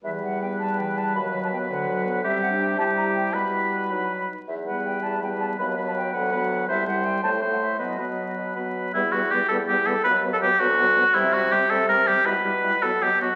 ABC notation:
X:1
M:6/8
L:1/16
Q:3/8=108
K:Em
V:1 name="Flute"
e2 f2 g2 a2 g2 a2 | b3 a g2 f6 | e2 f2 g2 a2 ^a2 g2 | b8- b2 z2 |
e2 f2 g2 a2 g2 a2 | b3 a g2 f6 | e2 f2 g2 a3 f e2 | ^d6 z6 |
B2 B2 B2 B2 B2 B2 | B2 B2 B2 B2 B2 B2 | e2 e2 e2 e2 e2 e2 | e2 e2 e2 ^d2 d2 d2 |]
V:2 name="Oboe"
B12- | B12 | G6 G6 | B6 B4 z2 |
z2 B6 B4 | B2 B4 B2 B4 | c2 c4 c2 c4 | B2 B6 B4 |
E2 F2 G2 A2 G2 A2 | B3 A G2 F6 | E2 F2 G2 A2 ^A2 G2 | B6 A2 G2 F2 |]
V:3 name="Clarinet"
E,2 G,2 B,2 G,2 E,2 G,2 | ^D,2 F,2 B,2 =D,2 F,2 B,2 | C3 D3 E6 | E6 ^D4 z2 |
z2 B,6 B,4 | B,2 B,4 B,2 B,4 | E2 E4 E2 E4 | B,2 B,6 B,4 |
B,2 B,2 B,2 B,2 B,2 B,2 | B,2 B,2 B,2 B,2 B,2 B,2 | C2 C2 C2 C2 C2 C2 | E2 E2 E2 B,2 B,2 B,2 |]
V:4 name="French horn" clef=bass
G,12 | F,12 | G,6 G,6 | G,6 F,4 z2 |
z2 G,6 G,4 | F,2 F,4 F,2 F,4 | G,2 G,4 A,2 A,4 | F,2 F,6 F,4 |
G,2 G,2 G,2 G,2 G,2 G,2 | F,2 F,2 F,2 F,2 F,2 F,2 | G,2 G,2 G,2 G,2 G,2 G,2 | G,2 G,2 G,2 F,2 F,2 F,2 |]
V:5 name="Bassoon" clef=bass
E,,12 | ^D,,6 =D,,6 | C,12 | B,,8- B,,2 z2 |
E,,6 E,,6 | ^D,,6 =D,,6 | C,,6 A,,6 | B,,6 B,,6 |
E,,6 E,,6 | ^D,,6 =D,,6 | C,6 C,6 | B,,6 B,,6 |]